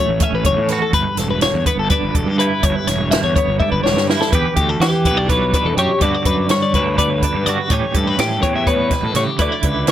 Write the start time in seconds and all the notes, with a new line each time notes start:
Already playing: A2 E3
0.00 A3 C#5
0.09 A1
0.20 C#4 E5, kick, closed hi-hat
0.33 A1 B4
0.44 F#1 E2 C#5, kick, closed hi-hat
0.57 A2
0.68 B4, snare, closed hi-hat
0.72 F#4
0.82 A4
0.93 G1 G2 B4, kick, closed hi-hat
1.17 E1 A4, snare, closed hi-hat
1.30 B4
1.41 D3 C#5, snare, closed hi-hat
1.54 E2
1.66 B3 B4, kick, closed hi-hat
1.77 G1 A4
1.90 D4 B4, kick, closed hi-hat
2.03 G1
2.15 E1 G2 A4, kick, closed hi-hat
2.26 G2 G4
2.39 E4 B4, closed hi-hat
2.63 G1 G2 C#5, kick, closed hi-hat
2.76 B4
2.87 E1 C#5, snare, closed hi-hat
3.11 D3 E5, snare, closed hi-hat
3.24 E2 C#5
3.36 B3 C#5, kick, closed hi-hat
3.48 G1
3.60 D4 E5, kick, high tom
3.72 G1 B4, kick
3.84 E1 G2 C#5, snare
3.96 G2, snare
4.08 E4 B4, snare
4.21 A4, snare
4.33 E2 G4 B4, kick, closed hi-hat
4.56 D2 G4, kick, closed hi-hat
4.69 A4
4.80 E3 G4, snare, closed hi-hat
5.05 B1 E3 B3 B4, kick, closed hi-hat
5.17 D4 D5
5.29 G3 B4 C#5, kick, closed hi-hat
5.53 B2 D4 B4, kick, closed hi-hat
5.65 E2 A4
5.77 F#2 G4 C#5, closed hi-hat
6.01 G2 D3 B3 D4 B4 D5, kick, closed hi-hat
6.05 F#4
6.15 D5
6.25 F#2 B4, kick, closed hi-hat
6.49 G3 C#5, snare, closed hi-hat
6.62 D5
6.74 D2 D3 D4 B4, kick, closed hi-hat
6.98 B3 B4 D5, kick, closed hi-hat
7.10 C#5
7.22 G2 D4 B4, kick, closed hi-hat
7.35 G2
7.46 G2 F#4 D5, closed hi-hat
7.59 B4
7.70 A2 E3 G3 C#4 G4 C#5, kick, closed hi-hat
7.94 G2 A4, kick, closed hi-hat
8.07 B4
8.18 A2 G4 A4, snare, closed hi-hat
8.43 E2 E3 C#4 C#5, kick, closed hi-hat
8.56 E5
8.67 A2 B4 C#5, kick, closed hi-hat
8.91 B2 B4, kick, snare, closed hi-hat
9.03 A2 A4
9.15 A2 C#3 G4 C#5, snare, closed hi-hat
9.39 D2 D3 E4 B4 D5, kick, closed hi-hat
9.52 D5
9.63 C#2 B4, kick, closed hi-hat
9.87 D3 C#5, snare, closed hi-hat